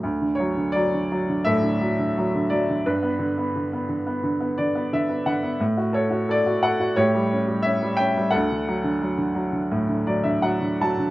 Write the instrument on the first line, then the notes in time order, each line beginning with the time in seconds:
upright piano
0.03 D2
0.22 D3
0.35 C#5
0.40 F#3
0.57 D3
0.72 F#3 D5
0.94 D3
1.12 F#3
1.29 D3
1.45 A2 A4 E5
1.63 D3
1.81 F#3
1.99 D3
2.18 F#3
2.35 D3
2.50 F#3 D5
2.70 D3
2.86 G2 D4 B4
3.03 B3
3.19 D3
3.38 B3
3.56 D3
3.73 B3
3.89 D3
4.07 B3
4.23 D3
4.40 B3
4.58 D3 D5
4.75 B3
4.93 D3 E5
5.09 B3
5.26 D3 F#5
5.43 B3
5.60 A2
5.77 F#4
5.93 A4 C#5
6.11 F#4
6.29 A4 D5
6.46 F#4
6.63 A4 F#5
6.80 F#4
6.96 A2 G4 C#5
7.15 G3
7.33 C#4
7.48 G3
7.62 C#4 E5
7.83 G3
7.97 C#4 G5
8.17 G3
8.31 A4 F#5
8.35 D2
8.52 D3
8.68 F#3
8.84 D3
9.02 F#3
9.18 D3
9.35 F#3
9.52 D3
9.71 A2
9.89 D3
10.07 F#3 D5
10.24 D3 E5
10.42 F#3 F#5
10.61 D3
10.81 F#3 A5
10.99 D3